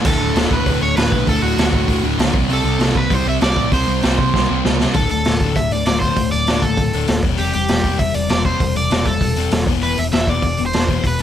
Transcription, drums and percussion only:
0.05 kick, open hi-hat, splash
0.36 snare, open hi-hat
0.51 kick
0.66 kick, open hi-hat
0.97 snare, open hi-hat
1.12 kick
1.27 kick, open hi-hat
1.58 snare, open hi-hat
1.73 kick
1.88 kick, open hi-hat
2.19 snare, open hi-hat
2.34 kick
2.49 open hi-hat
2.80 snare, open hi-hat
2.95 kick
3.10 kick, open hi-hat
3.41 snare, open hi-hat
3.56 kick
3.72 kick, open hi-hat
4.02 snare, open hi-hat
4.18 kick
4.34 kick, snare
4.65 snare
4.80 snare
4.94 kick, open hi-hat
5.09 open hi-hat
5.25 snare, open hi-hat
5.40 kick, open hi-hat
5.55 kick, open hi-hat
5.71 open hi-hat
5.86 snare, open hi-hat
6.02 kick, open hi-hat
6.16 kick, open hi-hat
6.32 open hi-hat
6.47 snare, open hi-hat
6.62 kick, open hi-hat
6.77 kick, open hi-hat
6.93 open hi-hat
7.07 snare, open hi-hat
7.23 kick, open hi-hat
7.37 open hi-hat
7.53 open hi-hat
7.68 snare, open hi-hat
7.84 kick, open hi-hat
7.99 kick, open hi-hat
8.14 open hi-hat
8.29 snare, open hi-hat
8.45 kick, open hi-hat
8.60 kick, open hi-hat
8.76 open hi-hat
8.91 snare, open hi-hat
9.05 kick, open hi-hat
9.21 kick, open hi-hat
9.36 open hi-hat
9.51 snare, open hi-hat
9.66 kick, open hi-hat
9.82 open hi-hat
9.97 open hi-hat
10.12 snare, open hi-hat
10.27 kick, open hi-hat
10.42 kick, open hi-hat
10.57 open hi-hat
10.73 snare, open hi-hat
10.88 kick, open hi-hat
11.04 kick, open hi-hat
11.19 open hi-hat

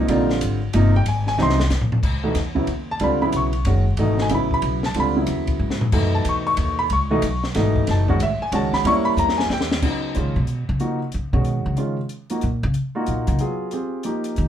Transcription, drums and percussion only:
0.08 ride
0.30 snare
0.41 hi-hat pedal, ride
0.73 ride
1.06 ride
1.27 snare
1.38 snare
1.49 snare
1.60 snare
1.70 snare, hi-hat pedal
1.81 floor tom
1.92 floor tom
2.03 kick, crash
2.35 snare, hi-hat pedal, ride
2.56 kick
2.67 ride
3.00 ride
3.32 hi-hat pedal, ride
3.53 ride
3.65 ride
3.97 ride
4.18 snare
4.29 hi-hat pedal, ride
4.51 kick
4.62 ride
4.83 snare
4.94 ride
5.26 hi-hat pedal, ride
5.47 kick, ride
5.70 snare
5.81 floor tom
5.92 kick, crash
6.25 hi-hat pedal, ride
6.57 ride
6.90 ride
7.22 hi-hat pedal, ride
7.43 snare
7.55 snare, ride
7.76 kick
7.87 snare, ride
8.08 kick
8.20 hi-hat pedal, ride
8.52 ride
8.73 snare
8.85 ride
9.17 hi-hat pedal
9.29 snare
9.39 snare
9.50 snare
9.61 snare
9.71 snare
9.82 kick, crash
10.15 closed hi-hat
10.47 closed hi-hat
10.80 closed hi-hat
11.12 closed hi-hat
11.45 closed hi-hat
11.77 closed hi-hat
12.09 closed hi-hat
12.30 closed hi-hat
12.41 closed hi-hat
12.74 closed hi-hat
13.06 closed hi-hat
13.27 closed hi-hat
13.39 closed hi-hat
13.71 closed hi-hat
14.03 closed hi-hat
14.24 closed hi-hat
14.36 closed hi-hat

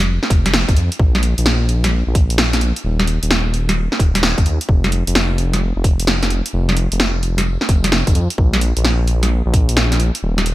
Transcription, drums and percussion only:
0.23 snare
0.30 kick, open hi-hat
0.46 snare, closed hi-hat
0.54 snare
0.69 kick, closed hi-hat
0.77 open hi-hat
0.92 closed hi-hat
0.99 kick
1.15 snare, closed hi-hat
1.23 open hi-hat
1.38 closed hi-hat
1.46 snare
1.69 open hi-hat
1.84 snare, closed hi-hat
2.15 kick, open hi-hat
2.30 closed hi-hat
2.38 snare
2.53 snare, closed hi-hat
2.61 open hi-hat
2.76 closed hi-hat
3.00 snare, closed hi-hat
3.07 open hi-hat
3.23 closed hi-hat
3.31 snare
3.54 open hi-hat
3.69 snare, closed hi-hat
3.92 snare
4.00 kick, open hi-hat
4.15 snare, closed hi-hat
4.23 snare
4.38 kick, closed hi-hat
4.46 open hi-hat
4.61 closed hi-hat
4.69 kick
4.84 snare, closed hi-hat
4.92 open hi-hat
5.07 closed hi-hat
5.15 snare
5.38 open hi-hat
5.53 snare, closed hi-hat
5.84 kick, open hi-hat
6.00 closed hi-hat
6.07 snare
6.23 snare, closed hi-hat
6.30 open hi-hat
6.46 closed hi-hat
6.69 snare, closed hi-hat
6.77 open hi-hat
6.92 closed hi-hat
7.00 snare
7.23 open hi-hat
7.38 snare, closed hi-hat
7.61 snare
7.69 kick, open hi-hat
7.84 snare, closed hi-hat
7.92 snare
8.07 kick, closed hi-hat
8.15 open hi-hat
8.30 closed hi-hat
8.38 kick
8.53 snare, closed hi-hat
8.61 open hi-hat
8.77 closed hi-hat
8.85 snare
9.08 open hi-hat
9.23 snare, closed hi-hat
9.54 kick, open hi-hat
9.69 closed hi-hat
9.77 snare
9.92 snare, closed hi-hat
10.00 open hi-hat
10.15 closed hi-hat
10.38 snare, closed hi-hat
10.46 open hi-hat

